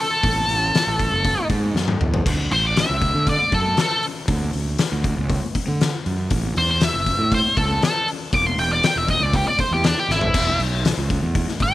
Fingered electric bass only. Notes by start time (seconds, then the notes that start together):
0.24 A1
0.48 A1
0.87 A1
1.12 F#1
1.49 G#2
1.75 F#2
2.00 E2
2.26 D2
2.51 A1
2.90 C#2
3.14 D3
3.52 F#2
4.28 D2
4.54 D2
4.92 D2
5.17 C#2
5.68 D3
6.06 F#2
6.31 A1
6.57 E2
6.94 F#1
7.19 A2
7.57 C#2
8.33 E1
8.58 E1
8.96 E1
9.20 C#2
9.71 E2
10.08 G#1
10.34 E1
10.59 B1
10.97 C#2
11.23 E2
11.60 G#1